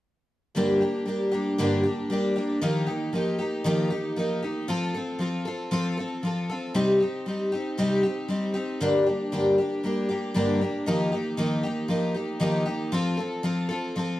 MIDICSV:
0, 0, Header, 1, 2, 480
1, 0, Start_track
1, 0, Key_signature, -2, "minor"
1, 0, Tempo, 515464
1, 520, Time_signature, 4, 2, 24, 8
1, 13222, End_track
2, 0, Start_track
2, 0, Title_t, "Twelve-string acoustic guitar"
2, 0, Program_c, 0, 25
2, 511, Note_on_c, 0, 43, 78
2, 519, Note_on_c, 0, 50, 70
2, 523, Note_on_c, 0, 55, 82
2, 528, Note_on_c, 0, 58, 77
2, 530, Note_on_c, 0, 62, 81
2, 533, Note_on_c, 0, 67, 85
2, 740, Note_off_c, 0, 67, 0
2, 751, Note_off_c, 0, 62, 0
2, 751, Note_on_c, 0, 67, 46
2, 755, Note_off_c, 0, 43, 0
2, 760, Note_off_c, 0, 50, 0
2, 761, Note_off_c, 0, 58, 0
2, 762, Note_off_c, 0, 55, 0
2, 763, Note_on_c, 0, 62, 49
2, 773, Note_on_c, 0, 58, 46
2, 777, Note_on_c, 0, 55, 39
2, 972, Note_off_c, 0, 55, 0
2, 983, Note_on_c, 0, 55, 52
2, 989, Note_off_c, 0, 58, 0
2, 996, Note_off_c, 0, 67, 0
2, 998, Note_off_c, 0, 62, 0
2, 1000, Note_on_c, 0, 58, 59
2, 1009, Note_on_c, 0, 62, 63
2, 1016, Note_on_c, 0, 67, 60
2, 1213, Note_off_c, 0, 67, 0
2, 1224, Note_on_c, 0, 67, 55
2, 1228, Note_off_c, 0, 62, 0
2, 1232, Note_off_c, 0, 55, 0
2, 1237, Note_off_c, 0, 58, 0
2, 1239, Note_on_c, 0, 62, 52
2, 1248, Note_on_c, 0, 58, 46
2, 1251, Note_on_c, 0, 55, 45
2, 1470, Note_off_c, 0, 55, 0
2, 1473, Note_off_c, 0, 67, 0
2, 1475, Note_on_c, 0, 43, 79
2, 1476, Note_off_c, 0, 58, 0
2, 1480, Note_off_c, 0, 62, 0
2, 1482, Note_on_c, 0, 50, 83
2, 1482, Note_on_c, 0, 55, 75
2, 1487, Note_on_c, 0, 58, 77
2, 1491, Note_on_c, 0, 62, 87
2, 1494, Note_on_c, 0, 67, 86
2, 1696, Note_off_c, 0, 67, 0
2, 1706, Note_off_c, 0, 62, 0
2, 1707, Note_on_c, 0, 67, 51
2, 1717, Note_off_c, 0, 58, 0
2, 1717, Note_on_c, 0, 62, 49
2, 1718, Note_off_c, 0, 43, 0
2, 1722, Note_off_c, 0, 50, 0
2, 1722, Note_off_c, 0, 55, 0
2, 1728, Note_on_c, 0, 58, 43
2, 1738, Note_on_c, 0, 55, 41
2, 1942, Note_off_c, 0, 55, 0
2, 1950, Note_off_c, 0, 58, 0
2, 1953, Note_on_c, 0, 55, 55
2, 1955, Note_off_c, 0, 67, 0
2, 1960, Note_off_c, 0, 62, 0
2, 1961, Note_on_c, 0, 58, 60
2, 1976, Note_on_c, 0, 62, 67
2, 1983, Note_on_c, 0, 67, 72
2, 2183, Note_off_c, 0, 67, 0
2, 2194, Note_on_c, 0, 67, 55
2, 2196, Note_off_c, 0, 62, 0
2, 2198, Note_off_c, 0, 55, 0
2, 2202, Note_off_c, 0, 58, 0
2, 2207, Note_on_c, 0, 62, 48
2, 2219, Note_on_c, 0, 58, 46
2, 2221, Note_on_c, 0, 55, 42
2, 2435, Note_off_c, 0, 55, 0
2, 2435, Note_on_c, 0, 51, 78
2, 2437, Note_off_c, 0, 58, 0
2, 2438, Note_off_c, 0, 67, 0
2, 2439, Note_on_c, 0, 53, 85
2, 2442, Note_off_c, 0, 62, 0
2, 2446, Note_on_c, 0, 63, 83
2, 2448, Note_on_c, 0, 58, 82
2, 2450, Note_on_c, 0, 67, 76
2, 2658, Note_off_c, 0, 67, 0
2, 2669, Note_on_c, 0, 67, 51
2, 2674, Note_off_c, 0, 63, 0
2, 2679, Note_off_c, 0, 51, 0
2, 2681, Note_off_c, 0, 53, 0
2, 2685, Note_off_c, 0, 58, 0
2, 2685, Note_on_c, 0, 63, 46
2, 2703, Note_on_c, 0, 58, 47
2, 2907, Note_off_c, 0, 58, 0
2, 2911, Note_on_c, 0, 53, 51
2, 2916, Note_off_c, 0, 67, 0
2, 2919, Note_on_c, 0, 58, 56
2, 2921, Note_off_c, 0, 63, 0
2, 2932, Note_on_c, 0, 63, 55
2, 2938, Note_on_c, 0, 67, 59
2, 3143, Note_off_c, 0, 67, 0
2, 3154, Note_on_c, 0, 67, 54
2, 3157, Note_off_c, 0, 53, 0
2, 3161, Note_off_c, 0, 58, 0
2, 3163, Note_off_c, 0, 63, 0
2, 3174, Note_on_c, 0, 63, 46
2, 3186, Note_on_c, 0, 58, 48
2, 3392, Note_on_c, 0, 51, 78
2, 3395, Note_off_c, 0, 58, 0
2, 3398, Note_off_c, 0, 63, 0
2, 3399, Note_off_c, 0, 67, 0
2, 3400, Note_on_c, 0, 53, 82
2, 3406, Note_on_c, 0, 58, 84
2, 3409, Note_on_c, 0, 63, 83
2, 3412, Note_on_c, 0, 67, 87
2, 3623, Note_off_c, 0, 67, 0
2, 3634, Note_on_c, 0, 67, 60
2, 3638, Note_off_c, 0, 51, 0
2, 3641, Note_off_c, 0, 63, 0
2, 3642, Note_off_c, 0, 53, 0
2, 3645, Note_off_c, 0, 58, 0
2, 3652, Note_on_c, 0, 63, 52
2, 3667, Note_on_c, 0, 58, 38
2, 3875, Note_off_c, 0, 58, 0
2, 3876, Note_on_c, 0, 53, 55
2, 3879, Note_off_c, 0, 67, 0
2, 3886, Note_on_c, 0, 58, 61
2, 3888, Note_off_c, 0, 63, 0
2, 3900, Note_on_c, 0, 63, 66
2, 3906, Note_on_c, 0, 67, 64
2, 4110, Note_off_c, 0, 67, 0
2, 4120, Note_off_c, 0, 53, 0
2, 4121, Note_on_c, 0, 67, 53
2, 4124, Note_off_c, 0, 63, 0
2, 4125, Note_off_c, 0, 58, 0
2, 4136, Note_on_c, 0, 63, 44
2, 4150, Note_on_c, 0, 58, 39
2, 4358, Note_on_c, 0, 53, 83
2, 4359, Note_off_c, 0, 58, 0
2, 4362, Note_off_c, 0, 67, 0
2, 4363, Note_on_c, 0, 60, 83
2, 4365, Note_off_c, 0, 63, 0
2, 4369, Note_on_c, 0, 65, 76
2, 4376, Note_on_c, 0, 69, 90
2, 4593, Note_off_c, 0, 69, 0
2, 4601, Note_off_c, 0, 53, 0
2, 4602, Note_off_c, 0, 65, 0
2, 4603, Note_off_c, 0, 60, 0
2, 4604, Note_on_c, 0, 69, 57
2, 4613, Note_on_c, 0, 65, 49
2, 4630, Note_on_c, 0, 60, 45
2, 4830, Note_on_c, 0, 53, 57
2, 4832, Note_off_c, 0, 60, 0
2, 4843, Note_off_c, 0, 65, 0
2, 4843, Note_on_c, 0, 60, 59
2, 4844, Note_off_c, 0, 69, 0
2, 4854, Note_on_c, 0, 65, 64
2, 4861, Note_on_c, 0, 69, 67
2, 5066, Note_off_c, 0, 69, 0
2, 5077, Note_off_c, 0, 53, 0
2, 5077, Note_on_c, 0, 69, 57
2, 5083, Note_off_c, 0, 60, 0
2, 5086, Note_off_c, 0, 65, 0
2, 5097, Note_on_c, 0, 65, 52
2, 5103, Note_on_c, 0, 60, 49
2, 5314, Note_off_c, 0, 60, 0
2, 5318, Note_on_c, 0, 53, 82
2, 5320, Note_off_c, 0, 69, 0
2, 5324, Note_off_c, 0, 65, 0
2, 5325, Note_on_c, 0, 60, 83
2, 5335, Note_on_c, 0, 65, 86
2, 5341, Note_on_c, 0, 69, 87
2, 5552, Note_off_c, 0, 69, 0
2, 5561, Note_off_c, 0, 53, 0
2, 5563, Note_on_c, 0, 69, 50
2, 5564, Note_off_c, 0, 60, 0
2, 5569, Note_off_c, 0, 65, 0
2, 5580, Note_on_c, 0, 65, 45
2, 5591, Note_on_c, 0, 60, 48
2, 5800, Note_on_c, 0, 53, 56
2, 5803, Note_off_c, 0, 69, 0
2, 5805, Note_off_c, 0, 60, 0
2, 5808, Note_off_c, 0, 65, 0
2, 5817, Note_on_c, 0, 60, 62
2, 5819, Note_on_c, 0, 65, 59
2, 5835, Note_on_c, 0, 69, 64
2, 6037, Note_off_c, 0, 69, 0
2, 6041, Note_off_c, 0, 53, 0
2, 6048, Note_on_c, 0, 69, 56
2, 6050, Note_off_c, 0, 60, 0
2, 6051, Note_off_c, 0, 65, 0
2, 6063, Note_on_c, 0, 65, 52
2, 6079, Note_on_c, 0, 60, 44
2, 6274, Note_off_c, 0, 60, 0
2, 6280, Note_on_c, 0, 48, 74
2, 6282, Note_on_c, 0, 55, 79
2, 6285, Note_off_c, 0, 69, 0
2, 6285, Note_on_c, 0, 60, 80
2, 6290, Note_off_c, 0, 65, 0
2, 6294, Note_on_c, 0, 63, 89
2, 6294, Note_on_c, 0, 67, 86
2, 6510, Note_off_c, 0, 67, 0
2, 6521, Note_off_c, 0, 48, 0
2, 6521, Note_on_c, 0, 67, 56
2, 6522, Note_off_c, 0, 55, 0
2, 6524, Note_off_c, 0, 60, 0
2, 6528, Note_off_c, 0, 63, 0
2, 6540, Note_on_c, 0, 63, 52
2, 6552, Note_on_c, 0, 60, 44
2, 6760, Note_on_c, 0, 55, 58
2, 6762, Note_off_c, 0, 67, 0
2, 6765, Note_off_c, 0, 60, 0
2, 6771, Note_off_c, 0, 63, 0
2, 6776, Note_on_c, 0, 60, 51
2, 6782, Note_on_c, 0, 63, 57
2, 6786, Note_on_c, 0, 67, 59
2, 6991, Note_off_c, 0, 67, 0
2, 7001, Note_off_c, 0, 55, 0
2, 7003, Note_on_c, 0, 67, 56
2, 7005, Note_off_c, 0, 63, 0
2, 7009, Note_off_c, 0, 60, 0
2, 7016, Note_on_c, 0, 63, 52
2, 7032, Note_on_c, 0, 60, 46
2, 7239, Note_off_c, 0, 60, 0
2, 7241, Note_on_c, 0, 48, 75
2, 7242, Note_off_c, 0, 67, 0
2, 7244, Note_off_c, 0, 63, 0
2, 7248, Note_on_c, 0, 55, 86
2, 7250, Note_on_c, 0, 60, 79
2, 7255, Note_on_c, 0, 63, 87
2, 7257, Note_on_c, 0, 67, 94
2, 7466, Note_off_c, 0, 67, 0
2, 7478, Note_on_c, 0, 67, 57
2, 7481, Note_off_c, 0, 48, 0
2, 7483, Note_off_c, 0, 63, 0
2, 7485, Note_off_c, 0, 55, 0
2, 7486, Note_off_c, 0, 60, 0
2, 7494, Note_on_c, 0, 63, 47
2, 7508, Note_on_c, 0, 60, 44
2, 7714, Note_on_c, 0, 55, 65
2, 7716, Note_off_c, 0, 60, 0
2, 7720, Note_off_c, 0, 67, 0
2, 7722, Note_off_c, 0, 63, 0
2, 7727, Note_on_c, 0, 60, 68
2, 7734, Note_on_c, 0, 63, 64
2, 7746, Note_on_c, 0, 67, 63
2, 7940, Note_off_c, 0, 67, 0
2, 7951, Note_on_c, 0, 67, 57
2, 7952, Note_off_c, 0, 63, 0
2, 7958, Note_off_c, 0, 55, 0
2, 7963, Note_on_c, 0, 63, 47
2, 7964, Note_off_c, 0, 60, 0
2, 7975, Note_on_c, 0, 60, 43
2, 8196, Note_off_c, 0, 67, 0
2, 8199, Note_on_c, 0, 43, 79
2, 8202, Note_off_c, 0, 63, 0
2, 8203, Note_on_c, 0, 50, 78
2, 8205, Note_off_c, 0, 60, 0
2, 8206, Note_on_c, 0, 55, 72
2, 8209, Note_on_c, 0, 58, 80
2, 8213, Note_on_c, 0, 62, 85
2, 8216, Note_on_c, 0, 67, 90
2, 8427, Note_off_c, 0, 67, 0
2, 8432, Note_off_c, 0, 62, 0
2, 8438, Note_on_c, 0, 67, 56
2, 8440, Note_off_c, 0, 43, 0
2, 8442, Note_off_c, 0, 50, 0
2, 8444, Note_off_c, 0, 55, 0
2, 8444, Note_on_c, 0, 62, 49
2, 8445, Note_off_c, 0, 58, 0
2, 8459, Note_on_c, 0, 58, 44
2, 8468, Note_on_c, 0, 55, 42
2, 8673, Note_off_c, 0, 55, 0
2, 8678, Note_off_c, 0, 58, 0
2, 8679, Note_off_c, 0, 67, 0
2, 8679, Note_on_c, 0, 43, 71
2, 8680, Note_on_c, 0, 50, 70
2, 8682, Note_off_c, 0, 62, 0
2, 8684, Note_on_c, 0, 55, 68
2, 8689, Note_on_c, 0, 58, 76
2, 8694, Note_on_c, 0, 62, 73
2, 8698, Note_on_c, 0, 67, 82
2, 8911, Note_off_c, 0, 67, 0
2, 8920, Note_off_c, 0, 43, 0
2, 8920, Note_off_c, 0, 50, 0
2, 8922, Note_off_c, 0, 55, 0
2, 8922, Note_off_c, 0, 62, 0
2, 8922, Note_on_c, 0, 67, 62
2, 8925, Note_off_c, 0, 58, 0
2, 8933, Note_on_c, 0, 62, 52
2, 8947, Note_on_c, 0, 58, 47
2, 8954, Note_on_c, 0, 55, 46
2, 9147, Note_off_c, 0, 55, 0
2, 9155, Note_off_c, 0, 58, 0
2, 9159, Note_on_c, 0, 55, 62
2, 9161, Note_off_c, 0, 67, 0
2, 9166, Note_on_c, 0, 58, 64
2, 9167, Note_off_c, 0, 62, 0
2, 9178, Note_on_c, 0, 62, 70
2, 9186, Note_on_c, 0, 67, 62
2, 9382, Note_off_c, 0, 67, 0
2, 9393, Note_on_c, 0, 67, 56
2, 9394, Note_off_c, 0, 62, 0
2, 9399, Note_off_c, 0, 55, 0
2, 9403, Note_off_c, 0, 58, 0
2, 9405, Note_on_c, 0, 62, 49
2, 9412, Note_on_c, 0, 58, 47
2, 9421, Note_on_c, 0, 55, 46
2, 9630, Note_off_c, 0, 55, 0
2, 9632, Note_on_c, 0, 43, 77
2, 9635, Note_off_c, 0, 58, 0
2, 9636, Note_off_c, 0, 67, 0
2, 9638, Note_on_c, 0, 50, 76
2, 9641, Note_on_c, 0, 55, 79
2, 9642, Note_off_c, 0, 62, 0
2, 9646, Note_on_c, 0, 58, 86
2, 9653, Note_on_c, 0, 62, 78
2, 9654, Note_on_c, 0, 67, 87
2, 9870, Note_off_c, 0, 67, 0
2, 9876, Note_off_c, 0, 43, 0
2, 9879, Note_off_c, 0, 50, 0
2, 9879, Note_off_c, 0, 62, 0
2, 9880, Note_off_c, 0, 55, 0
2, 9882, Note_on_c, 0, 67, 55
2, 9883, Note_off_c, 0, 58, 0
2, 9890, Note_on_c, 0, 62, 51
2, 9898, Note_on_c, 0, 58, 48
2, 9910, Note_on_c, 0, 55, 49
2, 10115, Note_off_c, 0, 58, 0
2, 10116, Note_on_c, 0, 51, 74
2, 10120, Note_off_c, 0, 67, 0
2, 10121, Note_off_c, 0, 55, 0
2, 10125, Note_off_c, 0, 62, 0
2, 10125, Note_on_c, 0, 53, 87
2, 10126, Note_on_c, 0, 58, 95
2, 10133, Note_on_c, 0, 63, 83
2, 10133, Note_on_c, 0, 67, 94
2, 10342, Note_off_c, 0, 67, 0
2, 10354, Note_on_c, 0, 67, 54
2, 10357, Note_off_c, 0, 51, 0
2, 10362, Note_off_c, 0, 53, 0
2, 10362, Note_off_c, 0, 58, 0
2, 10363, Note_off_c, 0, 63, 0
2, 10374, Note_on_c, 0, 63, 48
2, 10383, Note_on_c, 0, 58, 44
2, 10590, Note_off_c, 0, 58, 0
2, 10590, Note_on_c, 0, 51, 76
2, 10595, Note_off_c, 0, 63, 0
2, 10596, Note_off_c, 0, 67, 0
2, 10599, Note_on_c, 0, 53, 78
2, 10601, Note_on_c, 0, 58, 84
2, 10606, Note_on_c, 0, 63, 75
2, 10616, Note_on_c, 0, 67, 73
2, 10821, Note_off_c, 0, 67, 0
2, 10832, Note_on_c, 0, 67, 54
2, 10834, Note_off_c, 0, 51, 0
2, 10836, Note_off_c, 0, 63, 0
2, 10838, Note_off_c, 0, 53, 0
2, 10839, Note_off_c, 0, 58, 0
2, 10848, Note_on_c, 0, 63, 53
2, 10862, Note_on_c, 0, 58, 49
2, 11065, Note_on_c, 0, 53, 62
2, 11066, Note_off_c, 0, 58, 0
2, 11073, Note_off_c, 0, 63, 0
2, 11075, Note_off_c, 0, 67, 0
2, 11077, Note_on_c, 0, 58, 65
2, 11084, Note_on_c, 0, 63, 69
2, 11093, Note_on_c, 0, 67, 72
2, 11298, Note_off_c, 0, 67, 0
2, 11309, Note_on_c, 0, 67, 54
2, 11311, Note_off_c, 0, 53, 0
2, 11312, Note_off_c, 0, 63, 0
2, 11317, Note_off_c, 0, 58, 0
2, 11323, Note_on_c, 0, 63, 46
2, 11332, Note_on_c, 0, 58, 46
2, 11544, Note_on_c, 0, 51, 81
2, 11545, Note_off_c, 0, 58, 0
2, 11548, Note_off_c, 0, 63, 0
2, 11551, Note_on_c, 0, 53, 74
2, 11553, Note_off_c, 0, 67, 0
2, 11556, Note_on_c, 0, 58, 80
2, 11559, Note_on_c, 0, 63, 79
2, 11570, Note_on_c, 0, 67, 83
2, 11774, Note_off_c, 0, 67, 0
2, 11785, Note_on_c, 0, 67, 61
2, 11789, Note_off_c, 0, 63, 0
2, 11790, Note_off_c, 0, 51, 0
2, 11794, Note_off_c, 0, 53, 0
2, 11797, Note_off_c, 0, 58, 0
2, 11800, Note_on_c, 0, 63, 53
2, 11816, Note_on_c, 0, 58, 46
2, 12031, Note_off_c, 0, 67, 0
2, 12031, Note_on_c, 0, 53, 88
2, 12038, Note_off_c, 0, 58, 0
2, 12038, Note_off_c, 0, 63, 0
2, 12041, Note_on_c, 0, 60, 86
2, 12049, Note_on_c, 0, 65, 86
2, 12052, Note_on_c, 0, 69, 84
2, 12254, Note_off_c, 0, 69, 0
2, 12265, Note_on_c, 0, 69, 59
2, 12269, Note_off_c, 0, 65, 0
2, 12274, Note_off_c, 0, 53, 0
2, 12279, Note_off_c, 0, 60, 0
2, 12280, Note_on_c, 0, 65, 49
2, 12295, Note_on_c, 0, 60, 45
2, 12502, Note_off_c, 0, 60, 0
2, 12507, Note_on_c, 0, 53, 82
2, 12508, Note_off_c, 0, 65, 0
2, 12511, Note_off_c, 0, 69, 0
2, 12513, Note_on_c, 0, 60, 74
2, 12520, Note_on_c, 0, 65, 77
2, 12529, Note_on_c, 0, 69, 76
2, 12734, Note_off_c, 0, 69, 0
2, 12745, Note_on_c, 0, 69, 62
2, 12752, Note_off_c, 0, 53, 0
2, 12754, Note_off_c, 0, 65, 0
2, 12755, Note_off_c, 0, 60, 0
2, 12765, Note_on_c, 0, 65, 54
2, 12779, Note_on_c, 0, 60, 47
2, 12991, Note_off_c, 0, 69, 0
2, 12994, Note_off_c, 0, 60, 0
2, 12997, Note_on_c, 0, 53, 65
2, 13000, Note_off_c, 0, 65, 0
2, 13005, Note_on_c, 0, 60, 63
2, 13015, Note_on_c, 0, 65, 61
2, 13027, Note_on_c, 0, 69, 69
2, 13217, Note_off_c, 0, 69, 0
2, 13222, Note_off_c, 0, 53, 0
2, 13222, Note_off_c, 0, 60, 0
2, 13222, Note_off_c, 0, 65, 0
2, 13222, End_track
0, 0, End_of_file